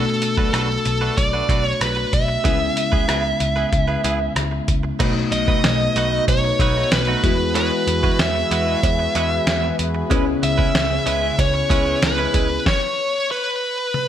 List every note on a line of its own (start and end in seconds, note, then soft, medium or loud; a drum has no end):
0.00 0.50 B2 medium
0.00 2.09 A3 medium
0.00 2.09 B3 medium
0.00 2.10 D4 medium
0.00 2.13 F#4 medium
0.00 0.52 A4 medium
0.06 muted clean electric guitar stroke soft
0.22 muted clean electric guitar stroke soft
0.22 closed hi-hat medium
0.37 0.49 B1 medium
0.37 0.51 A3 medium
0.37 0.51 D4 medium
0.37 0.50 F#4 medium
0.37 0.50 B4 medium
0.37 kick medium
0.53 0.77 B1 medium
0.53 0.70 A3 medium
0.53 0.70 D4 medium
0.53 0.69 F#4 medium
0.53 1.19 A4 medium
0.53 0.68 B4 medium
0.53 cross-stick loud
0.53 closed hi-hat medium
0.70 muted clean electric guitar stroke soft
0.85 1.09 B1 medium
0.85 muted clean electric guitar stroke soft
0.85 closed hi-hat medium
1.01 1.15 A3 medium
1.01 1.14 D4 soft
1.01 1.14 F#4 medium
1.01 1.14 B4 medium
1.17 1.41 B1 loud
1.17 1.64 D5 loud
1.17 muted clean electric guitar stroke soft
1.17 kick medium
1.17 closed hi-hat medium
1.33 1.47 A3 soft
1.33 1.47 D4 medium
1.33 1.46 F#4 medium
1.33 1.46 B4 medium
1.49 1.72 B1 medium
1.49 1.65 A3 medium
1.49 1.65 D4 medium
1.49 1.64 F#4 medium
1.49 1.64 B4 medium
1.49 kick medium
1.49 closed hi-hat medium
1.64 1.82 C#5 loud
1.64 muted clean electric guitar stroke soft
1.80 2.04 B1 medium
1.80 2.11 B4 medium
1.80 muted clean electric guitar stroke soft
1.80 cross-stick loud
1.80 closed hi-hat medium
1.96 muted clean electric guitar stroke soft
2.13 2.36 B1 loud
2.13 4.33 E5 medium
2.13 kick medium
2.13 closed hi-hat medium
2.28 muted clean electric guitar stroke soft
2.44 2.68 C#2 loud
2.44 3.37 C#3 medium
2.44 4.96 G#3 medium
2.44 2.61 B3 medium
2.44 4.96 B3 medium
2.44 4.97 C#4 medium
2.44 2.60 E4 medium
2.44 4.97 E4 medium
2.44 2.60 G#4 medium
2.44 2.59 B4 medium
2.44 kick loud
2.44 closed hi-hat medium
2.60 muted clean electric guitar stroke soft
2.76 muted clean electric guitar stroke soft
2.76 closed hi-hat medium
2.92 3.04 C#2 medium
2.92 3.06 B3 soft
2.92 3.06 E4 soft
2.92 3.05 G#4 medium
2.92 3.05 B4 medium
2.92 kick medium
3.08 3.32 C#2 medium
3.08 3.24 B3 medium
3.08 3.24 E4 medium
3.08 3.23 G#4 medium
3.08 3.23 B4 medium
3.08 cross-stick loud
3.08 closed hi-hat medium
3.24 muted clean electric guitar stroke soft
3.40 3.64 C#2 medium
3.40 muted clean electric guitar stroke soft
3.40 closed hi-hat medium
3.56 3.70 B3 soft
3.56 3.69 E4 medium
3.56 3.69 G#4 medium
3.56 3.69 B4 medium
3.72 3.95 C#2 medium
3.72 muted clean electric guitar stroke soft
3.72 kick medium
3.72 closed hi-hat medium
3.88 4.02 B3 soft
3.88 4.01 E4 medium
3.88 4.01 G#4 soft
3.88 4.01 B4 medium
4.04 4.27 C#2 medium
4.04 4.20 B3 medium
4.04 4.20 E4 medium
4.04 4.19 G#4 medium
4.04 4.19 B4 medium
4.04 closed hi-hat medium
4.20 muted clean electric guitar stroke soft
4.36 4.59 C#2 medium
4.36 muted clean electric guitar stroke soft
4.36 cross-stick loud
4.36 closed hi-hat medium
4.51 muted clean electric guitar stroke soft
4.68 4.91 C#2 medium
4.68 kick medium
4.68 closed hi-hat medium
4.83 muted clean electric guitar stroke soft
4.99 5.23 B1 loud
4.99 5.92 B2 medium
4.99 7.19 A3 medium
4.99 5.16 A3 medium
4.99 7.21 A3 medium
4.99 7.21 B3 medium
4.99 7.19 B3 medium
4.99 7.21 D#4 medium
4.99 5.15 D#4 medium
4.99 7.20 D#4 medium
4.99 5.15 F#4 medium
4.99 7.20 F#4 medium
4.99 5.14 B4 loud
4.99 kick loud
4.99 closed hi-hat medium
4.99 crash medium
4.99 cowbell medium
5.15 muted clean electric guitar stroke soft
5.31 5.55 B1 medium
5.31 6.24 D#5 medium
5.31 muted clean electric guitar stroke soft
5.31 closed hi-hat medium
5.48 5.61 A3 soft
5.48 5.61 D#4 medium
5.48 5.61 F#4 medium
5.48 5.61 B4 medium
5.48 kick medium
5.64 5.87 B1 medium
5.64 muted clean electric guitar stroke soft
5.64 snare loud
5.64 closed hi-hat medium
5.64 cowbell medium
5.80 muted clean electric guitar stroke soft
5.96 6.19 B1 medium
5.96 6.12 A3 medium
5.96 6.12 D#4 medium
5.96 6.11 F#4 medium
5.96 6.11 B4 loud
5.96 closed hi-hat medium
6.12 6.25 A3 medium
6.12 6.25 D#4 medium
6.12 6.25 F#4 medium
6.12 6.25 B4 medium
6.28 6.51 B1 medium
6.28 6.92 C#5 medium
6.28 kick medium
6.28 closed hi-hat medium
6.28 cowbell medium
6.44 muted clean electric guitar stroke soft
6.60 6.83 B1 medium
6.60 6.76 A3 medium
6.60 6.76 D#4 medium
6.60 6.75 F#4 medium
6.60 6.75 B4 medium
6.60 kick medium
6.60 closed hi-hat medium
6.76 6.89 A3 medium
6.76 6.89 D#4 medium
6.76 6.89 F#4 medium
6.76 6.88 B4 medium
6.92 7.15 B1 loud
6.92 7.54 B4 medium
6.92 snare loud
6.92 closed hi-hat medium
6.92 cowbell medium
7.07 7.23 A3 medium
7.07 7.23 D#4 medium
7.07 7.23 F#4 medium
7.07 7.23 B4 medium
7.23 7.70 E2 medium
7.23 10.08 E3 medium
7.23 8.16 E3 medium
7.23 9.75 G#3 medium
7.23 7.36 G#3 medium
7.23 9.75 B3 medium
7.23 12.62 E4 medium
7.23 7.36 E4 medium
7.23 9.75 E4 medium
7.23 10.08 F#4 medium
7.23 7.37 F#4 medium
7.23 9.76 F#4 medium
7.23 12.62 G#4 medium
7.23 12.62 B4 medium
7.23 7.37 B4 medium
7.23 kick loud
7.23 closed hi-hat medium
7.55 7.71 G#3 medium
7.55 7.71 E4 medium
7.55 7.71 F#4 medium
7.55 8.21 B4 loud
7.55 7.70 B4 loud
7.55 closed hi-hat medium
7.55 cowbell medium
7.71 muted clean electric guitar stroke soft
7.87 8.10 E2 medium
7.87 muted clean electric guitar stroke soft
7.87 closed hi-hat medium
8.03 8.17 G#3 medium
8.03 8.16 E4 medium
8.03 8.16 F#4 medium
8.03 8.16 B4 medium
8.03 kick loud
8.19 8.42 E2 medium
8.19 9.75 E5 medium
8.19 snare loud
8.19 closed hi-hat medium
8.19 cowbell medium
8.35 muted clean electric guitar stroke soft
8.51 8.74 E2 medium
8.51 8.67 G#3 medium
8.51 8.67 E4 medium
8.51 8.66 F#4 medium
8.51 8.65 B4 medium
8.51 closed hi-hat medium
8.67 8.81 G#3 medium
8.67 8.80 E4 medium
8.67 8.80 F#4 medium
8.67 8.80 B4 medium
8.83 9.06 E2 medium
8.83 kick medium
8.83 closed hi-hat medium
8.83 cowbell medium
8.99 muted clean electric guitar stroke soft
9.15 9.38 E2 medium
9.15 9.31 G#3 medium
9.15 9.31 E4 medium
9.15 9.31 F#4 medium
9.15 9.30 B4 medium
9.15 9.30 F#5 medium
9.15 closed hi-hat medium
9.31 9.46 E5 medium
9.31 muted clean electric guitar stroke soft
9.47 9.70 E2 loud
9.47 9.77 G#5 medium
9.47 muted clean electric guitar stroke soft
9.47 snare loud
9.47 closed hi-hat medium
9.47 cowbell medium
9.63 muted clean electric guitar stroke soft
9.79 10.02 E2 loud
9.79 10.09 B5 medium
9.79 closed hi-hat medium
9.95 muted clean electric guitar stroke soft
10.10 10.34 C#2 loud
10.10 11.03 C#3 medium
10.10 12.64 C#3 medium
10.10 10.27 G#3 medium
10.10 11.67 B3 medium
10.10 11.67 C#4 medium
10.10 12.64 C#4 medium
10.10 10.26 C#4 medium
10.10 11.67 E4 medium
10.10 10.26 E4 medium
10.10 11.68 G#4 medium
10.10 10.25 B4 medium
10.10 kick loud
10.10 closed hi-hat medium
10.10 cowbell medium
10.26 muted clean electric guitar stroke soft
10.42 10.66 C#2 medium
10.42 11.42 E5 loud
10.42 muted clean electric guitar stroke soft
10.42 closed hi-hat medium
10.58 10.72 G#3 medium
10.58 10.72 C#4 medium
10.58 10.71 E4 medium
10.58 10.71 B4 medium
10.58 kick medium
10.74 10.98 C#2 loud
10.74 snare loud
10.74 closed hi-hat loud
10.74 cowbell medium
10.90 muted clean electric guitar stroke soft
11.06 11.30 C#2 loud
11.06 11.22 G#3 medium
11.06 11.21 C#4 medium
11.06 11.21 E4 medium
11.06 11.20 B4 medium
11.06 closed hi-hat medium
11.22 11.36 G#3 medium
11.22 11.35 C#4 medium
11.22 11.35 E4 medium
11.22 11.35 B4 medium
11.38 11.62 C#2 medium
11.38 12.04 C#5 loud
11.38 muted clean electric guitar stroke soft
11.38 kick medium
11.38 closed hi-hat medium
11.38 cowbell medium
11.54 muted clean electric guitar stroke soft
11.70 11.93 C#2 medium
11.70 11.86 G#3 medium
11.70 12.66 B3 soft
11.70 12.66 C#4 soft
11.70 11.85 C#4 medium
11.70 12.66 E4 soft
11.70 11.85 E4 medium
11.70 12.66 G#4 medium
11.70 11.84 B4 medium
11.70 kick loud
11.70 closed hi-hat medium
11.85 11.99 G#3 medium
11.85 11.99 C#4 medium
11.85 11.99 E4 medium
11.85 11.99 B4 medium
12.02 12.25 C#2 loud
12.02 12.63 B4 medium
12.02 snare loud
12.02 closed hi-hat medium
12.02 cowbell medium
12.18 12.32 G#3 medium
12.18 12.33 C#4 medium
12.18 12.34 E4 medium
12.18 12.34 B4 medium
12.34 12.57 C#2 loud
12.34 12.47 G#3 medium
12.34 12.47 C#4 medium
12.34 12.47 E4 medium
12.34 12.48 B4 medium
12.34 kick medium
12.34 closed hi-hat medium
12.50 muted clean electric guitar stroke soft
12.66 13.31 C#5 medium
12.66 kick loud
12.66 snare medium
13.31 14.08 B4 medium
13.94 high tom medium